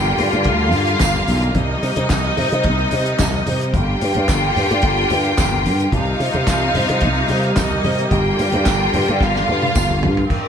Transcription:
Already playing: slap bass G1, string section D3 G3 A#3 F4, violin section G4 G5
0.05 muted conga
0.18 slap bass G2, open hi-hat, high conga, low conga
0.33 slap bass G2, closed hi-hat
0.44 slap bass D2, violin section F4 F5, kick, closed hi-hat
0.60 muted conga
0.72 slap bass G2, open hi-hat, high conga
0.87 closed hi-hat
1.00 slap bass G1, kick, snare, clap, closed hi-hat, tambourine, muted conga, high conga
1.14 muted conga, high conga
1.27 slap bass B1, open hi-hat, low conga
1.42 closed hi-hat
1.55 slap bass C2, string section C3 D#4, violin section D#4 D#5, kick, closed hi-hat, muted conga, low conga
1.83 slap bass C3, open hi-hat
1.96 slap bass C3, closed hi-hat, high conga
2.09 slap bass C2, kick, snare, clap, closed hi-hat, tambourine
2.24 muted conga
2.37 slap bass C3, open hi-hat, high conga, low conga
2.52 slap bass C3, closed hi-hat
2.63 slap bass C2, kick, closed hi-hat
2.79 muted conga
2.91 slap bass C3, open hi-hat, high conga
3.06 closed hi-hat
3.19 slap bass C2, kick, snare, clap, closed hi-hat, tambourine, high conga
3.33 high conga
3.46 slap bass C3, open hi-hat, low conga
3.61 closed hi-hat
3.74 slap bass G1, string section D3 F4, violin section G4 G5, kick, closed hi-hat, muted conga, low conga
4.01 slap bass G2, open hi-hat
4.15 slap bass G2, closed hi-hat, high conga
4.28 slap bass G1, kick, snare, clap, closed hi-hat, tambourine, muted conga
4.43 muted conga
4.56 slap bass G2, open hi-hat, high conga, low conga
4.71 slap bass G2, closed hi-hat
4.82 slap bass G1, kick, closed hi-hat, muted conga
5.10 slap bass G2, open hi-hat, high conga
5.25 closed hi-hat
5.38 slap bass G1, kick, snare, clap, closed hi-hat, tambourine, high conga
5.53 muted conga, high conga
5.65 slap bass G2, open hi-hat, low conga
5.80 closed hi-hat
5.92 slap bass C2, string section C3 G3 A#3 D#4, violin section F4 F5, kick, closed hi-hat, muted conga, low conga
6.07 muted conga
6.20 slap bass C3, open hi-hat
6.33 slap bass C3, closed hi-hat, high conga
6.47 slap bass C2, kick, snare, clap, closed hi-hat, tambourine, muted conga
6.74 slap bass C3, open hi-hat, high conga, low conga
6.89 slap bass C3, closed hi-hat
7.01 slap bass C2, kick, closed hi-hat, muted conga
7.28 slap bass C3, open hi-hat, high conga
7.43 closed hi-hat
7.56 slap bass C2, violin section D#4 D#5, kick, snare, clap, closed hi-hat, tambourine, high conga
7.70 muted conga, high conga
7.84 slap bass C3, open hi-hat, low conga
7.99 closed hi-hat
8.10 slap bass G1, string section D3 F4, violin section G4 G5, kick, closed hi-hat, low conga
8.26 muted conga
8.39 slap bass G2, open hi-hat
8.52 slap bass G2, closed hi-hat, high conga
8.65 slap bass G1, kick, snare, clap, closed hi-hat, tambourine, muted conga
8.94 slap bass G2, open hi-hat, high conga, low conga
9.08 slap bass G2, closed hi-hat
9.20 slap bass G1, violin section F4 F5, kick, snare, muted conga
9.35 snare, muted conga
9.48 slap bass G2, high conga
9.62 high tom
9.75 slap bass G1, kick, mid tom, tambourine, muted conga, high conga
9.90 muted conga, high conga
10.03 slap bass G2, floor tom, low conga
10.17 floor tom
10.30 string section D#3 C4 D4 A#4, kick, crash, muted conga, low conga

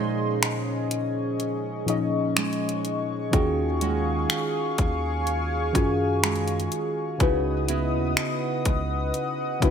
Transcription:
Already playing: synth keys A#2 F3 C#4 D#4 G#4 C5, nylon-string guitar A#2 G#3 C#4 D#4, analog synth pad C#4 G#4 D#5 C6
0.43 finger snap, closed hi-hat
0.91 analog synth pad C#6, closed hi-hat
1.40 closed hi-hat
1.85 synth keys A#2 F3 C#4 D#4 G#4, nylon-string guitar C#4, closed hi-hat
1.90 synth keys D#5
2.36 nylon-string guitar G#3, finger snap, closed hi-hat
2.53 closed hi-hat
2.69 closed hi-hat
2.85 closed hi-hat
3.31 808-style bass D#2, synth keys D#3 C#4 F4 F#4, nylon-string guitar D#3, analog synth pad G#4 F5 G#5, kick, closed hi-hat
3.35 synth keys G#4
3.81 nylon-string guitar G#3 C#4 F#4, closed hi-hat
4.30 finger snap, closed hi-hat
4.78 808-style bass D#2, kick, closed hi-hat
5.27 closed hi-hat
5.73 808-style bass F#2, synth keys D#3 C#4 F4 F#4, nylon-string guitar C#4, kick, closed hi-hat
5.77 synth keys G#4
6.23 nylon-string guitar G#3, finger snap, closed hi-hat
6.36 closed hi-hat
6.48 closed hi-hat
6.60 closed hi-hat
6.72 closed hi-hat
7.18 808-style bass C#2, synth keys C#3 C#4 D#4 E4 F#4, nylon-string guitar C#3, analog synth pad B4 D#5 F#5 D#6, kick, closed hi-hat
7.22 synth keys B4
7.68 nylon-string guitar B3 E4 F#4, closed hi-hat
7.93 808-style bass D#2
8.17 finger snap, closed hi-hat
8.65 808-style bass C#2, kick, closed hi-hat
9.14 closed hi-hat
9.60 808-style bass C#2, synth keys C#3 C#4 D#4 E4 F#4, nylon-string guitar E4, kick, closed hi-hat
9.64 synth keys B4

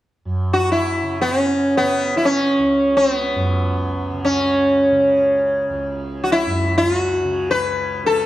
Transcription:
0.25 tanpura F#2
0.53 sitar F#4
0.72 sitar E4
1.03 tanpura C#3
1.21 sitar C#4
1.77 sitar B3
1.82 tanpura C#3
2.17 sitar E4
2.25 sitar C#4
2.59 tanpura C#2
2.97 sitar C4
3.15 sitar B3
3.36 tanpura F#2
4.13 tanpura C#3
4.25 sitar C#4
4.92 tanpura C#3
5.70 tanpura C#2
6.24 sitar F#4
6.32 sitar E4
6.46 tanpura F#2
6.78 sitar F4
6.97 sitar F#4
7.25 tanpura C#3
7.51 sitar B4
8.03 tanpura C#3, sitar A4

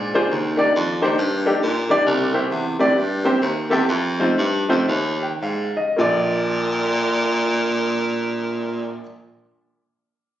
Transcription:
Already playing: baritone saxophone G#2, grand piano A#2
0.14 grand piano A#3 D4 F4 G#4 C5
0.30 baritone saxophone D#2, grand piano D#3
0.57 grand piano A#3 D4 D#4 G4 D5
0.76 baritone saxophone F2
1.02 baritone saxophone D#2, grand piano A#3 D4 D#4 G4 C5
1.18 baritone saxophone G2
1.46 grand piano A#3 D4 D#4 G4 A4
1.62 baritone saxophone A#2
1.89 grand piano A#3 D4 D#4 G4 D5
2.06 baritone saxophone C2, grand piano C3
2.33 grand piano A#3 C4 E4 G4 C5
2.50 baritone saxophone E2
2.79 baritone saxophone D2, grand piano A#3 C4 E4 G4 D5
2.95 baritone saxophone G2
3.24 grand piano A#3 C4 E4 G4 C5
3.41 baritone saxophone D#2
3.70 baritone saxophone E2, grand piano A#3 C4 E4 G4 A4
3.88 baritone saxophone F2
4.19 grand piano A3 C4 D#4 F4 C5
4.38 baritone saxophone G2
4.69 baritone saxophone F2, grand piano A3 C4 D#4 F4 C5
4.88 baritone saxophone D#2
5.23 grand piano G5
5.41 baritone saxophone G#2, grand piano F5
5.77 grand piano D#5
5.96 grand piano A#1 A#3 F4 A4, baritone saxophone A#2
6.01 grand piano D5

